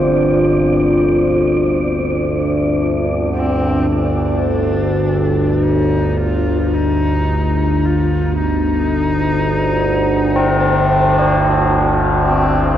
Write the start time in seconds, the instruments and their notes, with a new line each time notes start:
Already playing: synth drone G1 D2, analog synth pad C4 D4 F4 C5, tubular bells G4, synth texture D5
3.36 horsehead fiddle C4
3.87 synth drone G1 D2
3.92 horsehead fiddle D4
5.63 horsehead fiddle D#4
6.17 horsehead fiddle F4
6.73 horsehead fiddle D#4
7.85 horsehead fiddle F4
8.39 horsehead fiddle D#4
10.36 tubular bells C4
10.60 horsehead fiddle D4
11.19 tubular bells D4
12.23 horsehead fiddle C4